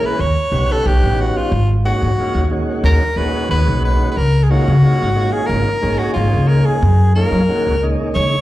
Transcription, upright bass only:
0.19 0.33 D#2 medium
0.52 0.66 B1 medium
0.86 0.99 B1 medium
1.04 1.30 A1 medium
1.52 1.92 G#1 medium
2.02 2.14 G#2 medium
2.18 muted upright bass stroke soft
2.35 2.61 D#2 medium
2.84 2.98 D#2 medium
3.16 3.30 D#2 medium
3.49 3.64 D#2 medium
3.68 3.94 B1 medium
4.17 4.57 C#2 medium
4.68 4.80 C#3 medium
4.83 muted upright bass stroke soft
5.02 5.28 G#1 medium
5.49 5.63 G#1 medium
5.83 5.97 G#1 medium
6.16 6.30 G#1 medium
6.34 6.60 C#2 medium
6.82 7.23 F#2 medium
7.32 7.45 F#3 medium
7.49 muted upright bass stroke soft
7.67 7.93 C#2 medium
8.16 8.30 C#2 medium

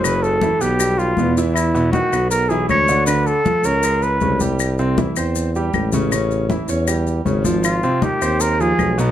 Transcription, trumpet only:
0.04 0.24 B4 medium
0.23 0.63 A4 medium
0.61 1.00 G4 medium
0.99 1.37 F4 medium
1.54 1.91 E4 medium
1.92 2.29 F#4 medium
2.31 2.51 A#4 medium
2.49 2.69 G#4 medium
2.69 3.05 C#5 loud
3.06 3.28 B4 medium
3.26 3.67 A4 loud
3.65 4.04 A#4 loud
4.03 4.41 B4 medium
7.64 8.04 F4 medium
8.03 8.43 G4 medium
8.41 8.62 A#4 loud
8.61 8.98 G#4 loud
9.00 9.11 D#4 medium

